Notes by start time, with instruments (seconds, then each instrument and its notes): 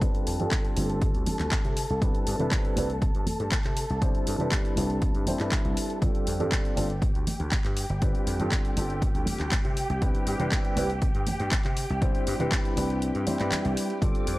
Already playing: violin section A4 A5
0.02 slap bass G1, grand piano G3 C4 D4 F4 B4, kick, closed hi-hat
0.15 closed hi-hat
0.27 slap bass F2, open hi-hat
0.39 slap bass G2, grand piano G3 C4 D4 F4 A4, closed hi-hat, tambourine, low conga
0.51 kick, clap, closed hi-hat
0.65 closed hi-hat
0.76 slap bass G1, grand piano G3 C4 D4 F4 A4, open hi-hat, high conga
0.90 closed hi-hat, tambourine
1.02 kick, closed hi-hat
1.15 slap bass D2, closed hi-hat, tambourine
1.26 open hi-hat, high conga, low conga
1.39 slap bass D2, clap, closed hi-hat, tambourine
1.52 kick, clap, closed hi-hat
1.65 slap bass C3, closed hi-hat, tambourine
1.77 open hi-hat
1.90 slap bass C2, closed hi-hat
2.02 slap bass C2, grand piano G3 C4 D4 E4 B4, kick, closed hi-hat
2.15 closed hi-hat
2.27 slap bass G2, open hi-hat
2.39 slap bass C3, grand piano G3 C4 D4 E4 B4, closed hi-hat, tambourine, low conga
2.52 kick, clap, closed hi-hat
2.65 closed hi-hat
2.76 slap bass C2, grand piano G3 C4 D4 E4 B4, open hi-hat, high conga
2.90 closed hi-hat, tambourine
3.02 kick, closed hi-hat
3.14 slap bass G2, closed hi-hat, tambourine
3.26 open hi-hat, high conga, low conga
3.39 slap bass G2, closed hi-hat, tambourine
3.52 kick, clap, closed hi-hat
3.65 slap bass C3, clap, closed hi-hat, tambourine
3.77 open hi-hat
3.90 slap bass C2, closed hi-hat, tambourine
4.02 slap bass C2, grand piano G3 C4 D4 E4 C5, kick, closed hi-hat
4.14 muted slap bass stroke, closed hi-hat, tambourine
4.27 slap bass G2, open hi-hat
4.39 slap bass C3, grand piano G3 C4 D4 E4 B4, closed hi-hat, tambourine, low conga
4.52 kick, clap, closed hi-hat
4.65 closed hi-hat
4.76 slap bass C2, grand piano G3 C4 D4 E4 B4, open hi-hat, high conga
4.89 closed hi-hat, tambourine
5.01 kick, closed hi-hat, tambourine
5.15 slap bass G2, closed hi-hat, tambourine
5.26 grand piano G3 C4 D4 E4 C5, open hi-hat, high conga, low conga
5.39 slap bass G2, grand piano G3 C4 D4 E4 B4, clap, closed hi-hat, tambourine
5.52 muted slap bass stroke, kick, clap, closed hi-hat
5.65 slap bass C2, closed hi-hat
5.77 open hi-hat
5.90 closed hi-hat, tambourine
6.02 slap bass G1, grand piano G3 C4 D4 F4 A4, violin section G4 G5, kick, closed hi-hat
6.15 closed hi-hat, tambourine
6.27 slap bass F2, open hi-hat
6.40 slap bass G2, grand piano G3 C4 D4 F4 A4, closed hi-hat, tambourine, low conga
6.52 kick, clap, closed hi-hat, tambourine
6.65 closed hi-hat
6.76 slap bass G1, grand piano G3 C4 D4 F4 A4, open hi-hat, high conga
6.90 closed hi-hat, tambourine
7.02 kick, closed hi-hat
7.15 slap bass D2, closed hi-hat, tambourine
7.27 open hi-hat, high conga, low conga
7.40 slap bass D2, closed hi-hat, tambourine
7.52 kick, clap, closed hi-hat
7.64 slap bass G2, clap, closed hi-hat, tambourine
7.77 open hi-hat
7.89 slap bass G1, closed hi-hat, tambourine
8.02 slap bass G1, grand piano G3 C4 D4 F4 B4, kick, closed hi-hat
8.15 muted slap bass stroke, closed hi-hat, tambourine
8.27 slap bass F2, open hi-hat
8.39 slap bass G2, grand piano G3 C4 D4 F4 A4, closed hi-hat, tambourine, low conga
8.51 kick, clap, closed hi-hat, tambourine
8.65 closed hi-hat
8.77 slap bass G1, grand piano G3 C4 D4 F4 A4, open hi-hat, high conga
8.89 closed hi-hat, tambourine
9.02 kick, closed hi-hat
9.15 slap bass D2, closed hi-hat
9.26 open hi-hat, high conga, low conga
9.39 slap bass D2, clap, closed hi-hat, tambourine
9.51 muted slap bass stroke, kick, clap, closed hi-hat, tambourine
9.64 slap bass C3, closed hi-hat, tambourine
9.77 open hi-hat
9.90 slap bass C2, closed hi-hat, tambourine
10.01 slap bass C2, grand piano G3 C4 D4 E4 B4, kick, closed hi-hat
10.15 closed hi-hat
10.27 slap bass G2, open hi-hat
10.40 slap bass C3, grand piano G3 C4 D4 E4 B4, closed hi-hat, tambourine, low conga
10.52 kick, clap, closed hi-hat, tambourine
10.65 closed hi-hat
10.76 slap bass C2, grand piano G3 C4 D4 E4 B4, open hi-hat, high conga
10.89 closed hi-hat, tambourine
11.02 kick, closed hi-hat
11.14 slap bass G2, closed hi-hat, tambourine
11.27 open hi-hat, high conga, low conga
11.39 slap bass G2, closed hi-hat, tambourine
11.52 kick, clap, closed hi-hat
11.65 slap bass C3, clap, closed hi-hat, tambourine
11.77 open hi-hat
11.89 slap bass C2, closed hi-hat, tambourine
12.02 slap bass C2, grand piano G3 C4 D4 E4 C5, kick, closed hi-hat
12.15 closed hi-hat, tambourine
12.27 slap bass G2, open hi-hat
12.40 slap bass C3, grand piano G3 C4 D4 E4 B4, closed hi-hat, tambourine, low conga
12.52 kick, clap, closed hi-hat
12.65 closed hi-hat, tambourine
12.77 slap bass C2, grand piano G3 C4 D4 E4 B4, open hi-hat, high conga
12.90 closed hi-hat, tambourine
13.02 closed hi-hat, swell
13.15 slap bass G2, closed hi-hat, tambourine
13.27 grand piano G3 C4 D4 E4 C5, open hi-hat, high conga, low conga
13.39 slap bass G2, grand piano G3 C4 D4 E4 B4, clap, closed hi-hat, tambourine
13.51 muted slap bass stroke, clap, closed hi-hat, tambourine, low conga
13.65 slap bass C2, closed hi-hat
13.77 open hi-hat
13.90 closed hi-hat, tambourine
14.01 slap bass G1, grand piano G3 C4 D4 F4 A4, violin section C4 D6, kick, closed hi-hat, tambourine
14.15 closed hi-hat, tambourine
14.27 slap bass F2, open hi-hat